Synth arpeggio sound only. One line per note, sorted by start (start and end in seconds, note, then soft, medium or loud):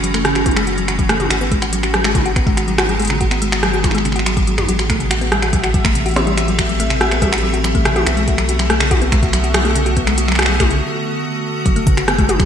0.04 0.11 F#3 medium
0.14 0.24 A3 loud
0.25 0.32 C#3 medium
0.35 0.42 F#4 loud
0.46 0.56 B3 medium
0.57 0.63 G#3 loud
0.67 0.74 F#4 medium
0.78 0.85 F#3 medium
0.88 0.98 F#4 medium
0.99 1.06 F#3 medium
1.09 1.19 A3 medium
1.20 1.27 C#3 medium
1.30 1.37 F#4 loud
1.41 1.51 B3 medium
1.52 1.58 G#3 loud
1.62 1.69 F#4 medium
1.73 1.80 F#3 medium
1.83 1.93 F#4 medium
1.94 2.01 F#3 medium
2.04 2.14 G#3 loud
2.15 2.22 C#3 medium
2.26 2.32 F#4 loud
2.36 2.46 B3 medium
2.47 2.54 G#3 loud
2.57 2.64 F#4 medium
2.68 2.75 F#3 medium
2.78 2.88 F#4 medium
2.89 2.96 F#3 medium
2.99 3.10 G#3 loud
3.10 3.17 C#3 medium
3.21 3.27 F#4 loud
3.31 3.41 B3 medium
3.42 3.49 G#3 loud
3.52 3.59 F#4 medium
3.63 3.70 F#3 medium
3.73 3.83 F#4 medium
3.84 3.91 F#3 medium
3.95 4.05 G#3 loud
4.05 4.12 C#3 medium
4.16 4.23 F#4 loud
4.26 4.33 F#3 medium
4.37 4.44 F#3 medium
4.47 4.54 F#3 medium
4.58 4.68 F#2 medium
4.68 4.75 F#3 loud
4.79 4.83 F#4 medium
4.90 5.00 A3 loud
5.00 5.07 C3 medium
5.11 5.18 F#4 loud
5.21 5.31 B3 medium
5.32 5.39 G3 loud
5.42 5.49 F#4 medium
5.53 5.60 F#3 medium
5.64 5.74 F#4 medium
5.74 5.81 F#3 medium
5.85 5.95 A3 loud
5.95 6.02 C3 medium
6.06 6.13 F#4 loud
6.16 6.26 B3 medium
6.27 6.34 G3 loud
6.38 6.44 F#4 medium
6.48 6.55 F#3 medium
6.59 6.69 F#4 medium
6.69 6.76 F#3 medium
6.80 6.90 A3 loud
6.90 6.97 C3 medium
7.01 7.08 F#4 loud
7.11 7.21 B3 medium
7.22 7.29 G3 loud
7.33 7.39 F#4 medium
7.43 7.50 F#3 medium
7.54 7.64 F#4 medium
7.64 7.71 F#3 medium
7.75 7.85 A3 loud
7.85 7.92 C3 medium
7.96 8.03 F#4 loud
8.06 8.17 B3 medium
8.17 8.24 G#3 loud
8.28 8.35 F#4 medium
8.38 8.45 F#3 medium
8.49 8.59 F#4 medium
8.59 8.66 F#3 medium
8.70 8.80 A3 loud
8.80 8.87 C#3 medium
8.91 8.98 F#4 loud
9.02 9.12 B3 medium
9.12 9.19 G#3 loud
9.23 9.30 F#4 medium
9.33 9.40 F#3 medium
9.44 9.54 F#4 medium
9.54 9.61 F#3 medium
9.65 9.75 A3 loud
9.76 9.82 C#3 medium
9.86 9.93 F#4 loud
9.97 10.07 B3 medium
10.07 10.14 G#3 loud
10.18 10.25 F#4 medium
10.28 10.35 F#3 medium
10.39 10.49 F#4 medium
10.49 10.56 F#3 medium
10.60 10.70 A3 loud
10.71 10.77 C#3 medium
11.66 11.73 F#3 medium
11.76 11.86 A3 loud
11.87 11.94 C#3 medium
11.97 12.04 F#4 loud
12.08 12.18 B3 medium
12.19 12.25 G#3 loud
12.29 12.36 F#4 medium
12.40 12.45 F#3 medium